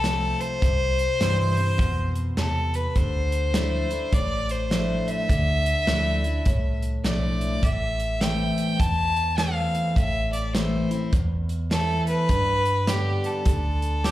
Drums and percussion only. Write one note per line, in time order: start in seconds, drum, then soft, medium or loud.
0.04 snare medium
0.04 closed hi-hat medium
0.41 closed hi-hat medium
0.62 kick loud
0.62 closed hi-hat medium
0.99 closed hi-hat medium
1.21 snare loud
1.21 closed hi-hat medium
1.57 closed hi-hat medium
1.79 kick loud
1.79 closed hi-hat medium
2.16 closed hi-hat medium
2.37 snare loud
2.37 closed hi-hat medium
2.74 closed hi-hat medium
2.96 kick medium
2.96 closed hi-hat medium
3.32 closed hi-hat medium
3.54 snare loud
3.54 closed hi-hat loud
3.91 closed hi-hat medium
4.13 kick loud
4.13 closed hi-hat medium
4.49 closed hi-hat medium
4.71 snare loud
4.71 closed hi-hat medium
5.08 closed hi-hat medium
5.29 kick loud
5.29 closed hi-hat medium
5.66 closed hi-hat medium
5.87 snare loud
5.87 closed hi-hat medium
6.24 closed hi-hat medium
6.46 kick loud
6.46 closed hi-hat medium
6.82 closed hi-hat medium
7.04 snare loud
7.04 closed hi-hat medium
7.41 closed hi-hat medium
7.63 kick loud
7.63 closed hi-hat medium
8.00 closed hi-hat medium
8.21 snare loud
8.21 closed hi-hat medium
8.58 closed hi-hat medium
8.80 kick loud
8.80 closed hi-hat loud
9.16 closed hi-hat medium
9.38 snare loud
9.38 closed hi-hat medium
9.75 closed hi-hat medium
9.96 kick loud
9.96 closed hi-hat medium
10.33 closed hi-hat medium
10.55 snare loud
10.55 closed hi-hat medium
10.91 closed hi-hat medium
11.13 kick loud
11.13 closed hi-hat medium
11.49 closed hi-hat medium
11.71 snare loud
11.71 closed hi-hat medium
12.07 closed hi-hat medium
12.29 kick loud
12.29 closed hi-hat medium
12.66 closed hi-hat medium
12.87 snare loud
12.87 closed hi-hat loud
13.24 closed hi-hat medium
13.45 kick loud
13.45 closed hi-hat loud
13.82 closed hi-hat medium
14.04 snare medium
14.04 closed hi-hat medium